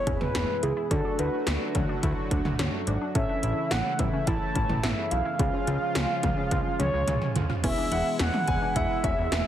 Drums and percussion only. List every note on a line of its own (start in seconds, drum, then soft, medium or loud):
0.07 kick medium
0.07 closed hi-hat medium
0.21 mid tom medium
0.35 snare loud
0.35 closed hi-hat medium
0.63 closed hi-hat medium
0.91 kick loud
0.91 closed hi-hat medium
1.19 closed hi-hat medium
1.47 snare loud
1.47 closed hi-hat medium
1.75 kick medium
1.75 closed hi-hat medium
1.75 mid tom medium
2.03 kick medium
2.03 closed hi-hat medium
2.31 kick medium
2.31 closed hi-hat medium
2.45 mid tom medium
2.59 snare loud
2.59 closed hi-hat medium
2.87 closed hi-hat medium
3.15 kick loud
3.15 closed hi-hat medium
3.43 closed hi-hat medium
3.71 snare loud
3.71 closed hi-hat medium
3.99 kick medium
3.99 closed hi-hat medium
3.99 mid tom medium
4.27 kick medium
4.27 closed hi-hat medium
4.55 kick loud
4.55 closed hi-hat medium
4.69 mid tom medium
4.83 snare loud
4.83 closed hi-hat medium
5.11 closed hi-hat medium
5.39 kick loud
5.39 closed hi-hat medium
5.67 closed hi-hat medium
5.95 snare loud
5.95 closed hi-hat medium
6.23 kick medium
6.23 closed hi-hat medium
6.23 mid tom medium
6.51 kick medium
6.51 closed hi-hat medium
6.51 high tom medium
6.80 closed hi-hat medium
6.80 mid tom medium
7.08 closed hi-hat medium
7.08 mid tom medium
7.22 mid tom medium
7.36 closed hi-hat medium
7.36 floor tom loud
7.50 floor tom medium
7.64 kick loud
7.64 closed hi-hat medium
7.64 crash loud
7.92 closed hi-hat medium
8.19 snare loud
8.19 closed hi-hat medium
8.34 mid tom loud
8.48 kick medium
8.48 closed hi-hat medium
8.76 kick loud
8.76 closed hi-hat medium
9.04 kick medium
9.04 closed hi-hat medium
9.32 snare loud
9.32 closed hi-hat medium